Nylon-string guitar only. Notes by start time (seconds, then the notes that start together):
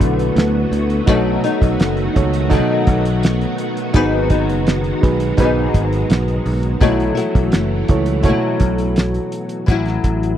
Already playing: D3 A3 B3 F#4
1.07 B2 F#3 A3 D#4
1.44 F#3 A3 D#4
2.50 B2 F#3
2.54 A3 D#4
3.94 G#2 F#3 B3 D#4
4.31 F#3 B3 D#4
5.37 G#2 F#3
5.41 B3 D#4
6.80 B2 F#3 A3 E4
7.15 F#3 A3 E4
8.23 B2 F#3
8.28 A3 E4
9.66 A2 F#3 C#4
9.71 E4